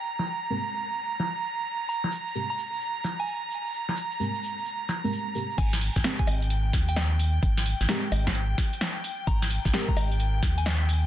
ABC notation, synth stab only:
X:1
M:4/4
L:1/16
Q:"Swing 16ths" 1/4=130
K:Ab
V:1 name="Synth stab"
z4 [A,CGB] z8 z3 | z4 [A,CGB] z8 z3 | z4 [A,CGB] z6 [A,CGB] z2 [A,CGB] z | z4 [A,CGB] z8 z3 |
z4 [A,CGB] z8 z3 | z4 [A,CGB] z8 z3 |]